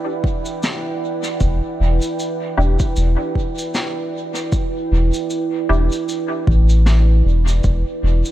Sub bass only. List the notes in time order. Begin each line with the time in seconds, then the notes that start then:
1.41 E1
1.80 E1
2.58 E1
2.97 E1
4.92 E1
5.69 E1
6.47 A1
7.25 E1
7.64 E1
8.03 E1